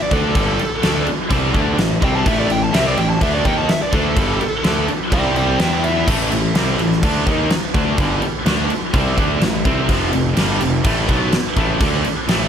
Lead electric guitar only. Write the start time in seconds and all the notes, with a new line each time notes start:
0.02 D5
0.14 A4
2.04 G5
2.15 A5
2.27 E5
2.39 D5
2.52 G5
2.64 A5
2.74 E5
2.87 D5
2.98 G5
3.10 A5
3.22 E5
3.34 D5
3.45 G5
3.58 A5
3.69 E5
3.82 D5
3.94 A4
5.12 D5 G5
5.37 D5 G5
5.60 B4 G5
5.84 E5